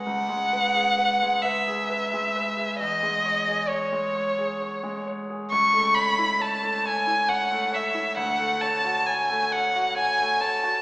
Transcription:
<<
  \new Staff \with { instrumentName = "Violin" } { \time 3/4 \key cis \minor \tempo 4 = 67 fis''4. e''4. | dis''4 cis''4. r8 | \key a \major cis'''8 b''8 a''8 gis''8 fis''8 e''8 | fis''8 a''8 gis''8 fis''8 gis''8 a''8 | }
  \new Staff \with { instrumentName = "Grand piano" } { \time 3/4 \key cis \minor cis,16 gis16 b'16 gis'16 b'16 gis16 b'16 gis'16 b'16 gis16 b'16 gis'16 | e,16 gis16 cis''16 gis'16 cis''16 gis16 cis''16 gis'16 cis''16 gis16 cis''16 gis'16 | \key a \major cis,16 a16 cis''16 e'16 cis''16 a16 cis''16 e'16 cis''16 a16 cis''16 e'16 | d,16 a16 cis''16 fis'16 cis''16 a16 cis''16 fis'16 cis''16 a16 cis''16 fis'16 | }
>>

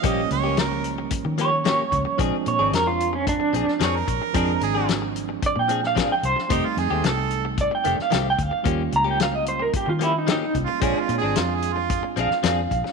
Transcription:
<<
  \new Staff \with { instrumentName = "Clean electric guitar" } { \time 4/4 \key bes \mixolydian \tempo 4 = 111 r2 r8 des''4. | r8 des''8 bes'16 f'8 des'16 d'4 r4 | r2 d''16 g''8 f''8 g''16 c''8 | r2 d''16 g''8 f''8 g''16 f''8 |
r8 bes''16 g''16 f''16 ees''16 c''16 bes'16 g'16 f'16 e'16 ees'16 ees'8 r8 | r2 r8 f''4. | }
  \new Staff \with { instrumentName = "Harmonica" } { \time 4/4 \key bes \mixolydian ees''8 des''8 bes'8 r2 r8 | r2. des''16 bes'8.~ | bes'8 aes'8 r2. | ees'16 f'16 aes'8 a'8. r2 r16 |
r2. \tuplet 3/2 { r4 f'8 } | \tuplet 3/2 { des'8 f'8 aes'8 f'8 aes'8 f'8~ } f'16 r4. r16 | }
  \new Staff \with { instrumentName = "Clean electric guitar" } { \time 4/4 \key bes \mixolydian <f bes des' g'>16 r8 <bes des' g'>16 r4. <f bes des' g'>16 r16 <f bes des' g'>16 r8. | <f c' d' aes'>16 r8 <c' d' aes'>16 r4. <f c' d' aes'>16 r16 <f c' d' aes'>16 r8. | <f c' d' aes'>16 r8 <c' d' aes'>16 r4. <f c' d' aes'>16 r16 <f c' d' aes'>16 r8. | <ees a c' g'>16 r8 <a c' g'>16 r4. <ees a c' g'>16 r16 <ees a c' g'>16 r8. |
<f bes des' g'>16 r8 <bes des' g'>16 r4. <f bes des' g'>16 r16 <f bes des' g'>16 r8. | <f c' d' aes'>16 r8 <c' d' aes'>16 r4. <f c' d' aes'>16 r16 <f c' d' aes'>16 r8. | }
  \new Staff \with { instrumentName = "Tine electric piano" } { \time 4/4 \key bes \mixolydian <f g bes des'>2.~ <f g bes des'>8 <f g bes des'>8 | <f aes c' d'>1 | <f aes c' d'>1 | <g a c' ees'>1 |
<g bes des' f'>2.~ <g bes des' f'>8 <g bes des' f'>8 | <aes c' d' f'>1 | }
  \new Staff \with { instrumentName = "Fingered electric bass" } { \clef bass \time 4/4 \key bes \mixolydian bes,,8 des,4.~ des,16 ees4~ ees16 des,16 r16 | bes,,16 r16 bes,16 aes,,16 f,4. bes,,16 r16 f,8 bes,,16 r16 | f,8 aes,,4.~ aes,,16 bes,4~ bes,16 c,16 r16 | f,,16 r16 f,16 ees,16 c,4. f,,16 r16 c,8 d,16 r16 |
ees,8 des,4.~ des,16 ees4~ ees16 c,16 r16 | bes,,16 r16 bes,16 aes,,16 f,4. bes,,16 r16 f,8 bes,,16 r16 | }
  \new DrumStaff \with { instrumentName = "Drums" } \drummode { \time 4/4 <hh bd>8 hh8 <hh sn>8 hh8 <hh bd>8 hh8 <hh sn>8 <hh bd>8 | <hh bd>8 hh8 <hh sn>8 hh8 <hh bd>8 hh16 sn16 <hh sn>8 <hh bd>8 | <hh bd>8 hh8 <hh sn>8 hh8 <hh bd>8 hh16 sn16 <hh bd sn>8 hh16 sn16 | <hh bd>8 hh8 <hh sn>8 hh8 <hh bd>8 hh16 sn16 <hh sn>8 <hh bd>8 |
<hh bd>8 hh8 <hh sn>8 hh8 <hh bd>8 hh8 <hh sn>8 <hh bd>8 | <hh bd>8 hh8 <hh sn>8 hh8 <hh bd>8 hh16 sn16 <hh sn>8 <hh bd>16 sn16 | }
>>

